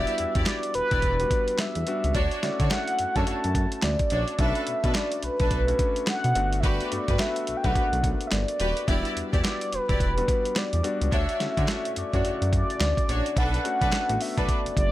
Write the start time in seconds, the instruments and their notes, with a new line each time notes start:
Already playing: grand piano G3 B3 D4 F#4, string section E4 G4 D5, soft synth lead E5
0.07 closed hi-hat
0.18 analog synth bass E2, closed hi-hat
0.35 analog synth bass E2, grand piano G3 B3 D4 F#4, string section E4 G4 D5, kick, closed hi-hat
0.46 soft synth lead D5, snare, clap, closed hi-hat
0.63 closed hi-hat
0.74 analog synth bass E1, soft synth lead B4, closed hi-hat
0.91 analog synth bass E1, string section E4 G4 D5, kick, closed hi-hat
1.02 analog synth bass E1, kick, closed hi-hat
1.19 grand piano G3 B3 D4 F#4, closed hi-hat
1.31 kick, closed hi-hat
1.48 closed hi-hat
1.59 soft synth lead E5, snare, clap, closed hi-hat
1.75 analog synth bass E2, closed hi-hat
1.87 grand piano G3 B3 D4 F#4, closed hi-hat
2.04 analog synth bass C#2, closed hi-hat
2.15 analog synth bass D2, string section D4 F#4 C#5, soft synth lead D5, kick, closed hi-hat
2.31 closed hi-hat
2.42 analog synth bass D3, grand piano A3 C#4 E4 F#4, snare, closed hi-hat
2.60 analog synth bass D3, string section D4 F#4 C#5, kick, closed hi-hat
2.70 grand piano A3 C#4 E4 F#4, soft synth lead F#5, snare, clap, closed hi-hat
2.88 closed hi-hat
2.99 analog synth bass F#2, closed hi-hat
3.15 analog synth bass F#2, grand piano A3 C#4 E4 A4, string section D4 F#4 C#5, soft synth lead A5, kick, closed hi-hat
3.27 analog synth bass F#2, grand piano A3 C#4 E4 F#4, closed hi-hat
3.44 analog synth bass F#2, closed hi-hat
3.55 kick, closed hi-hat
3.72 closed hi-hat
3.82 analog synth bass D2, soft synth lead D5, snare, clap, closed hi-hat
3.99 kick, closed hi-hat
4.10 analog synth bass A#1, string section D4 F#4 C#5, closed hi-hat
4.28 closed hi-hat
4.38 analog synth bass B1, grand piano A3 C#4 D4 F#4, string section D4 A4 B4, soft synth lead E5, kick, closed hi-hat
4.55 closed hi-hat
4.67 analog synth bass B2, closed hi-hat
4.84 analog synth bass B2, grand piano A3 C#4 D4 F#4, string section D4 A4 B4, kick, closed hi-hat
4.95 soft synth lead D5, snare, clap, closed hi-hat
5.12 closed hi-hat
5.23 analog synth bass B1, soft synth lead B4, closed hi-hat
5.40 analog synth bass B1, string section D4 A4 B4, kick, closed hi-hat
5.51 analog synth bass B1, kick, closed hi-hat
5.67 grand piano A3 C#4 D4 F#4, closed hi-hat
5.79 kick, closed hi-hat
5.96 closed hi-hat
6.07 soft synth lead F#5, snare, clap, closed hi-hat
6.24 analog synth bass B2, closed hi-hat
6.35 analog synth bass G1, grand piano A3 B3 D4 F#4, closed hi-hat
6.53 closed hi-hat
6.60 string section F#4 G4 B4, soft synth lead E5, kick, closed hi-hat
6.64 soft synth lead D5
6.81 closed hi-hat
6.91 analog synth bass G2, grand piano A3 B3 D4 F#4, closed hi-hat
7.08 analog synth bass G2, string section F#4 G4 B4, kick, closed hi-hat
7.19 grand piano A3 B3 D4 F#4, soft synth lead E5, snare, clap, closed hi-hat
7.36 closed hi-hat
7.47 analog synth bass B1, closed hi-hat
7.57 soft synth lead G5
7.63 analog synth bass B1, grand piano A3 B3 D4 F#4, string section F#4 G4 B4, soft synth lead F#5, kick, closed hi-hat
7.74 analog synth bass B1, grand piano A3 A#3 D4 F#4, kick, closed hi-hat
7.81 grand piano B3
7.92 analog synth bass B1, closed hi-hat
8.04 kick, closed hi-hat
8.21 closed hi-hat
8.27 soft synth lead E5
8.32 analog synth bass G1, soft synth lead D5, snare, clap, closed hi-hat
8.48 closed hi-hat
8.59 analog synth bass D#1, string section F#4 G4 B4, closed hi-hat
8.77 closed hi-hat
8.87 analog synth bass E1, grand piano G3 B3 D4 F#4, string section E4 G4 D5, soft synth lead E5, kick, closed hi-hat
9.05 closed hi-hat
9.16 analog synth bass E2, closed hi-hat
9.32 analog synth bass E2, grand piano G3 B3 D4 F#4, string section E4 G4 D5, kick, closed hi-hat
9.45 soft synth lead D5, snare, clap, closed hi-hat
9.61 closed hi-hat
9.73 analog synth bass E1, soft synth lead B4, closed hi-hat
9.89 analog synth bass E1, string section E4 G4 D5, kick, closed hi-hat
10.00 analog synth bass E1, kick, closed hi-hat
10.17 grand piano G3 B3 D4 F#4, closed hi-hat
10.28 kick, closed hi-hat
10.45 closed hi-hat
10.56 soft synth lead D5, snare, clap, closed hi-hat
10.73 analog synth bass E2, closed hi-hat
10.83 grand piano G3 B3 D4 F#4, closed hi-hat
11.01 analog synth bass C#2, closed hi-hat
11.12 analog synth bass D2, string section D4 F#4 C#5, soft synth lead E5, kick, closed hi-hat
11.29 closed hi-hat
11.40 analog synth bass D3, grand piano A3 C#4 E4 F#4, snare, closed hi-hat
11.57 analog synth bass D3, string section D4 F#4 C#5, kick, closed hi-hat
11.68 grand piano A3 C#4 E4 F#4, snare, clap, closed hi-hat
11.85 closed hi-hat
11.96 analog synth bass F#2, soft synth lead D5, closed hi-hat
12.13 analog synth bass F#2, grand piano A3 C#4 E4 F#4, string section D4 F#4 C#5, kick, closed hi-hat
12.23 analog synth bass F#2, grand piano C#3 A3 E4 F#4, closed hi-hat
12.42 analog synth bass F#2, closed hi-hat
12.53 soft synth lead D5, kick, closed hi-hat
12.70 closed hi-hat
12.80 analog synth bass D2, snare, clap, closed hi-hat
12.97 kick, closed hi-hat
13.08 analog synth bass A#1, string section D4 F#4 C#5, closed hi-hat
13.26 closed hi-hat
13.36 analog synth bass B1, string section D4 A4 B4, soft synth lead F#5, kick, closed hi-hat
13.54 closed hi-hat
13.64 grand piano A3 C#4 D4 F#4, closed hi-hat
13.81 analog synth bass B1, string section D4 A4 B4, kick, closed hi-hat
13.92 snare, clap, closed hi-hat
14.09 analog synth bass A1, grand piano A3 B3 D4 F#4, closed hi-hat
14.21 soft synth lead E5, open hi-hat
14.37 analog synth bass B1, string section D4 A4 B4, soft synth lead D5, kick, closed hi-hat
14.48 kick, closed hi-hat
14.65 analog synth bass F#1, closed hi-hat
14.77 analog synth bass F#1, soft synth lead D5, kick, closed hi-hat